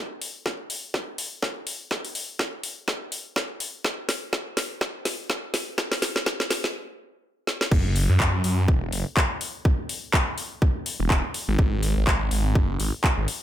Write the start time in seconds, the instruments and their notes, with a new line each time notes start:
0.22 open hi-hat
0.46 kick, snare
0.70 open hi-hat
0.94 kick, snare
1.18 open hi-hat
1.43 kick, snare
1.67 open hi-hat
1.91 kick, snare
2.05 open hi-hat
2.15 open hi-hat
2.39 kick, snare
2.63 open hi-hat
2.88 kick, snare
3.12 open hi-hat
3.36 kick, snare
3.60 open hi-hat
3.84 kick, snare
4.09 snare, open hi-hat
4.33 kick, snare
4.57 snare, open hi-hat
4.81 kick, snare
5.05 snare, open hi-hat
5.30 kick, snare
5.54 snare, open hi-hat
5.78 kick, snare
5.92 snare, open hi-hat
6.02 snare, open hi-hat
6.16 snare
6.26 kick, snare
6.40 snare
6.51 snare, open hi-hat
6.64 snare
7.47 snare
7.61 snare
7.72 detuned saw bass F#1, kick, crash
7.96 open hi-hat
8.09 detuned saw bass F#2
8.20 kick, clap
8.44 detuned saw bass F#2, open hi-hat
8.68 detuned saw bass E1, kick
8.92 detuned saw bass F#1, open hi-hat
9.17 kick, clap
9.41 open hi-hat
9.65 kick
9.89 open hi-hat
10.14 kick, clap
10.38 open hi-hat
10.62 kick
10.86 open hi-hat
11.00 detuned saw bass E1
11.10 kick, clap
11.34 open hi-hat
11.48 detuned saw bass G#1
11.59 detuned saw bass G#1, kick
11.83 open hi-hat
11.97 detuned saw bass G#1
12.07 kick, clap
12.31 detuned saw bass G#1, open hi-hat
12.55 detuned saw bass F#1, kick
12.80 detuned saw bass G#1, open hi-hat
13.04 kick, clap
13.17 detuned saw bass G#1
13.28 open hi-hat